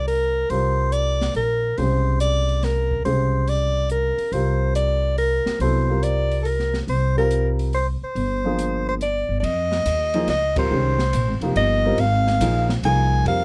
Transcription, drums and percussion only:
0.08 open hi-hat soft
0.50 open hi-hat soft
0.92 closed hi-hat soft
1.21 snare soft
1.21 open hi-hat soft
1.35 open hi-hat soft
1.78 open hi-hat soft
2.20 closed hi-hat soft
2.49 open hi-hat soft
2.63 snare soft
2.63 open hi-hat soft
2.91 kick soft
3.05 open hi-hat soft
3.48 open hi-hat soft
3.90 closed hi-hat soft
4.19 open hi-hat soft
4.33 open hi-hat soft
4.75 closed hi-hat soft
5.18 open hi-hat soft
5.46 snare soft
5.60 open hi-hat soft
6.03 closed hi-hat soft
6.32 open hi-hat soft
6.45 open hi-hat soft
6.59 snare soft
6.74 snare soft
6.88 open hi-hat soft
7.31 closed hi-hat soft
7.59 open hi-hat soft
7.73 open hi-hat soft
8.16 open hi-hat soft
8.59 closed hi-hat soft
9.01 closed hi-hat soft
9.44 ride medium
9.72 snare soft
9.86 hi-hat pedal medium
9.86 ride medium
10.14 ride soft
10.28 snare soft
10.28 ride soft
10.56 kick medium
10.56 ride medium
10.99 snare soft
11.13 hi-hat pedal medium
11.13 ride medium
11.41 ride soft
11.56 ride medium
11.98 ride medium
12.27 snare soft
12.41 hi-hat pedal medium
12.41 ride medium
12.69 snare medium
12.83 ride medium
13.26 ride medium

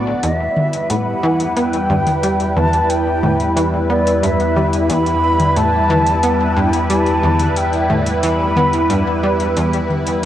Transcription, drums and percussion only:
0.23 closed hi-hat medium
0.57 high tom medium
0.73 closed hi-hat medium
0.90 closed hi-hat medium
1.40 closed hi-hat soft
1.57 closed hi-hat medium
1.73 closed hi-hat soft
1.90 high tom medium
2.07 closed hi-hat medium
2.07 high tom medium
2.23 closed hi-hat medium
2.40 closed hi-hat soft
2.57 high tom medium
2.73 closed hi-hat medium
2.90 closed hi-hat medium
3.23 high tom medium
3.40 closed hi-hat medium
3.57 closed hi-hat medium
4.07 closed hi-hat medium
4.23 closed hi-hat medium
4.40 closed hi-hat soft
4.56 high tom medium
4.73 closed hi-hat medium
4.90 closed hi-hat medium
5.06 closed hi-hat soft
5.40 closed hi-hat medium
5.40 high tom medium
5.56 closed hi-hat medium
5.90 high tom medium
6.07 closed hi-hat medium
6.23 closed hi-hat medium
6.73 closed hi-hat medium
6.90 closed hi-hat medium
7.06 closed hi-hat soft
7.23 high tom medium
7.39 closed hi-hat medium
7.39 high tom medium
7.56 closed hi-hat medium
7.73 closed hi-hat soft
7.90 high tom medium
8.06 closed hi-hat medium
8.23 closed hi-hat medium
8.56 high tom medium
8.73 closed hi-hat medium
8.90 closed hi-hat medium
9.40 closed hi-hat medium
9.57 closed hi-hat medium
9.73 closed hi-hat soft
9.90 high tom medium
10.07 closed hi-hat medium

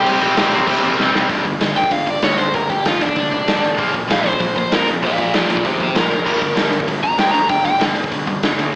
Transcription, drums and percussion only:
0.06 crash medium
0.21 crash medium
0.37 snare loud
0.37 crash medium
0.52 crash medium
0.60 kick medium
0.67 kick loud
0.67 crash medium
0.83 crash medium
1.00 snare medium
1.15 snare medium
1.30 kick loud
1.30 open hi-hat medium
1.45 kick medium
1.45 open hi-hat medium
1.61 snare loud
1.61 open hi-hat medium
1.76 open hi-hat medium
1.84 kick medium
1.91 kick loud
1.91 open hi-hat medium
2.07 kick medium
2.07 open hi-hat medium
2.22 snare loud
2.22 open hi-hat medium
2.38 open hi-hat medium
2.54 kick loud
2.54 open hi-hat medium
2.70 kick medium
2.70 open hi-hat medium
2.85 snare loud
2.85 open hi-hat medium
3.01 open hi-hat medium
3.09 kick medium
3.16 kick loud
3.16 open hi-hat medium
3.32 kick medium
3.32 open hi-hat medium
3.48 snare loud
3.48 open hi-hat medium
3.64 open hi-hat medium
3.79 kick loud
3.79 open hi-hat medium
3.94 kick medium
3.94 open hi-hat medium
4.10 snare loud
4.10 open hi-hat medium
4.26 open hi-hat medium
4.33 kick medium
4.40 kick loud
4.40 open hi-hat medium
4.56 kick medium
4.56 open hi-hat medium
4.72 snare loud
4.72 open hi-hat medium
4.88 open hi-hat medium
5.03 kick loud
5.03 open hi-hat medium
5.18 kick medium
5.18 open hi-hat medium
5.34 snare loud
5.34 open hi-hat medium
5.50 open hi-hat medium
5.57 kick medium
5.65 kick loud
5.65 open hi-hat medium
5.80 kick medium
5.80 open hi-hat medium
5.96 snare loud
5.96 open hi-hat medium
6.11 open hi-hat medium
6.27 kick medium
6.27 crash medium
6.42 kick medium
6.42 open hi-hat medium
6.57 snare loud
6.57 open hi-hat medium
6.73 open hi-hat medium
6.80 kick medium
6.88 kick loud
6.88 open hi-hat medium
7.03 kick medium
7.03 open hi-hat medium
7.18 snare loud
7.18 open hi-hat medium
7.34 open hi-hat medium
7.49 kick loud
7.49 open hi-hat medium
7.65 kick medium
7.65 open hi-hat medium
7.81 snare loud
7.81 open hi-hat medium
7.96 open hi-hat medium
8.04 kick medium
8.12 kick loud
8.12 open hi-hat medium
8.27 kick medium
8.27 open hi-hat medium
8.43 snare loud
8.43 open hi-hat medium
8.59 open hi-hat medium

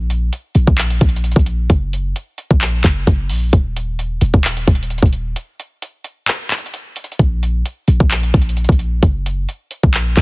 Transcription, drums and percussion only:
0.10 closed hi-hat medium
0.33 closed hi-hat medium
0.55 closed hi-hat medium
0.67 kick loud
0.78 clap loud
0.78 closed hi-hat soft
0.90 closed hi-hat medium
1.01 kick loud
1.01 closed hi-hat medium
1.09 closed hi-hat medium
1.16 closed hi-hat medium
1.24 closed hi-hat medium
1.32 closed hi-hat soft
1.36 kick loud
1.36 closed hi-hat soft
1.46 closed hi-hat medium
1.70 kick loud
1.70 closed hi-hat medium
1.93 closed hi-hat medium
2.16 closed hi-hat medium
2.38 closed hi-hat medium
2.51 kick loud
2.61 clap loud
2.61 closed hi-hat medium
2.84 kick loud
2.84 clap medium
2.84 closed hi-hat medium
3.07 kick medium
3.07 closed hi-hat medium
3.29 open hi-hat medium
3.53 kick loud
3.53 closed hi-hat medium
3.76 closed hi-hat medium
3.99 closed hi-hat medium
4.21 closed hi-hat medium
4.34 kick loud
4.45 clap loud
4.45 closed hi-hat medium
4.57 closed hi-hat medium
4.67 kick loud
4.67 closed hi-hat medium
4.75 closed hi-hat medium
4.83 closed hi-hat medium
4.90 closed hi-hat medium
4.98 closed hi-hat soft
5.03 kick loud
5.03 closed hi-hat soft
5.13 closed hi-hat medium
5.36 closed hi-hat medium
5.60 closed hi-hat medium
5.82 closed hi-hat medium
6.04 closed hi-hat medium
6.27 clap loud
6.27 closed hi-hat medium
6.51 clap medium
6.51 closed hi-hat medium
6.58 closed hi-hat medium
6.66 closed hi-hat medium
6.74 closed hi-hat medium
6.96 closed hi-hat medium
6.96 open hi-hat medium
7.04 closed hi-hat medium
7.12 closed hi-hat soft
7.19 kick loud
7.19 closed hi-hat medium
7.43 closed hi-hat medium
7.66 closed hi-hat medium
7.88 closed hi-hat medium
8.00 kick medium
8.11 clap loud
8.11 closed hi-hat soft
8.23 closed hi-hat medium
8.34 kick loud
8.34 closed hi-hat medium
8.42 closed hi-hat medium
8.49 closed hi-hat medium
8.57 closed hi-hat medium
8.64 closed hi-hat soft
8.69 kick loud
8.69 closed hi-hat soft
8.79 closed hi-hat medium
9.03 kick loud
9.03 closed hi-hat medium
9.26 closed hi-hat medium
9.49 closed hi-hat medium
9.71 closed hi-hat medium
9.83 kick loud
9.94 clap loud
9.94 closed hi-hat medium
10.17 kick loud
10.17 clap medium
10.17 closed hi-hat medium

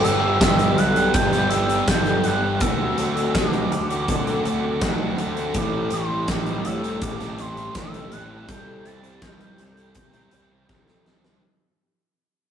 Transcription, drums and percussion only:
0.05 closed hi-hat medium
0.41 kick loud
0.41 snare loud
0.41 closed hi-hat loud
0.59 closed hi-hat soft
0.78 closed hi-hat medium
0.96 closed hi-hat soft
1.14 kick loud
1.14 closed hi-hat loud
1.33 snare soft
1.33 closed hi-hat soft
1.50 closed hi-hat medium
1.69 closed hi-hat soft
1.88 kick loud
1.88 snare loud
1.88 closed hi-hat loud
2.06 closed hi-hat soft
2.24 closed hi-hat medium
2.60 kick loud
2.60 closed hi-hat loud
2.98 closed hi-hat medium
3.17 closed hi-hat medium
3.35 kick loud
3.35 snare loud
3.35 closed hi-hat loud
3.53 closed hi-hat soft
3.72 closed hi-hat medium
3.90 closed hi-hat soft
4.08 kick loud
4.08 closed hi-hat loud
4.27 closed hi-hat soft
4.45 closed hi-hat medium
4.81 kick loud
4.81 snare loud
4.81 closed hi-hat loud
5.18 closed hi-hat medium
5.37 closed hi-hat soft
5.54 kick loud
5.54 closed hi-hat medium
5.91 closed hi-hat medium
6.28 kick loud
6.28 snare loud
6.28 closed hi-hat loud
6.46 closed hi-hat soft
6.65 closed hi-hat medium
6.84 closed hi-hat medium
7.02 kick loud
7.02 closed hi-hat loud
7.20 snare soft
7.20 closed hi-hat soft
7.38 closed hi-hat medium
7.57 closed hi-hat soft
7.75 kick loud
7.75 snare loud
7.75 closed hi-hat loud
7.94 closed hi-hat medium
8.12 closed hi-hat medium
8.49 kick loud
8.49 closed hi-hat loud
8.86 closed hi-hat medium
9.04 closed hi-hat soft
9.22 kick loud
9.22 snare loud
9.22 closed hi-hat loud
9.40 closed hi-hat soft
9.58 closed hi-hat medium
9.77 closed hi-hat medium
9.95 kick loud
9.95 closed hi-hat loud
10.13 closed hi-hat medium
10.31 closed hi-hat medium
10.69 kick loud
10.69 snare medium
10.88 snare medium
11.06 snare loud
11.24 snare loud

